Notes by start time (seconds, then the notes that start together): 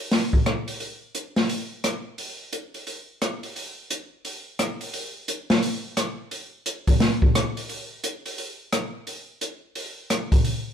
0.11 snare, open hi-hat
0.33 kick
0.46 cross-stick, closed hi-hat
0.68 open hi-hat
0.80 open hi-hat
1.15 closed hi-hat
1.36 snare, open hi-hat
1.49 open hi-hat
1.84 cross-stick, closed hi-hat
2.18 open hi-hat
2.53 closed hi-hat
2.74 open hi-hat
2.87 open hi-hat
3.22 cross-stick, closed hi-hat
3.43 open hi-hat
3.56 open hi-hat
3.90 closed hi-hat
4.25 open hi-hat
4.59 cross-stick, closed hi-hat
4.81 open hi-hat
4.93 open hi-hat
5.28 closed hi-hat
5.50 snare, open hi-hat
5.63 open hi-hat
5.97 cross-stick, closed hi-hat
6.31 open hi-hat
6.66 closed hi-hat
6.87 kick, open hi-hat
7.00 snare, open hi-hat
7.22 kick
7.35 cross-stick, closed hi-hat
7.57 open hi-hat
7.69 open hi-hat
8.04 closed hi-hat
8.26 open hi-hat
8.38 open hi-hat
8.72 cross-stick, closed hi-hat
9.07 open hi-hat
9.41 closed hi-hat
9.75 open hi-hat
10.10 cross-stick, closed hi-hat
10.32 kick, open hi-hat
10.44 open hi-hat